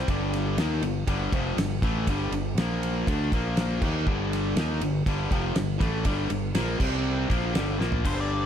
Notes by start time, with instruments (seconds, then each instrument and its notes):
0.08 fingered electric bass G1, distorted electric guitar G2 D3 G3, kick, ride
0.34 snare, ride
0.57 fingered electric bass D#2, distorted electric guitar D#3 A#3 D#4, snare, ride
0.82 fingered electric bass G1, distorted electric guitar G2 D3, ride
1.07 fingered electric bass G1, distorted electric guitar G2 D3 G3, kick, ride
1.32 fingered electric bass F1, distorted electric guitar F2 C3 F3, kick, ride
1.57 fingered electric bass G1, distorted electric guitar G2 D3, snare, ride
1.82 fingered electric bass A1, distorted electric guitar A2 E3 A3, kick, ride
2.07 fingered electric bass G1, distorted electric guitar G2 D3 G3, kick, ride
2.32 fingered electric bass G1, distorted electric guitar G2 D3, ride
2.55 fingered electric bass A#1, distorted electric guitar A#2 F3, snare, ride
2.59 distorted electric guitar A#3
2.83 ride
3.07 fingered electric bass D2, distorted electric guitar D3 A3 D4, kick, ride
3.32 fingered electric bass A#1, distorted electric guitar A#2 F3 A#3, kick, ride
3.57 snare, ride
3.81 fingered electric bass D#2, distorted electric guitar D#3 A#3 D#4, kick, snare, crash
4.07 fingered electric bass G1, distorted electric guitar G2 D3 G3, kick
4.33 snare, ride
4.56 fingered electric bass D#2, distorted electric guitar D#3 A#3 D#4, snare, ride
4.81 fingered electric bass G1, distorted electric guitar G2 D3, ride
5.06 fingered electric bass G1, distorted electric guitar G2 D3 G3, kick, ride
5.31 fingered electric bass F1, distorted electric guitar F2 C3 F3, kick, ride
5.56 fingered electric bass G1, distorted electric guitar G2 D3, snare, ride
5.79 fingered electric bass A1, distorted electric guitar A2 E3 A3, kick, snare, ride
6.05 fingered electric bass G1, distorted electric guitar G2 D3 G3, kick, ride
6.30 fingered electric bass G1, distorted electric guitar G2 D3, ride
6.55 fingered electric bass A#1, distorted electric guitar A#2 F3 A#3, snare, ride
6.79 fingered electric bass C2, distorted electric guitar C3 G3 C4, kick, crash
7.29 fingered electric bass A#1, distorted electric guitar A#2 F3 A#3, kick, ride
7.54 fingered electric bass G1, distorted electric guitar G2 D3 G3, snare, ride
7.79 fingered electric bass A#1, distorted electric guitar A#2 F3 A#3, snare
7.92 floor tom
8.04 fingered electric bass G1, distorted electric guitar G2 D3 G3, lead electric guitar C5, kick, crash
8.20 lead electric guitar D5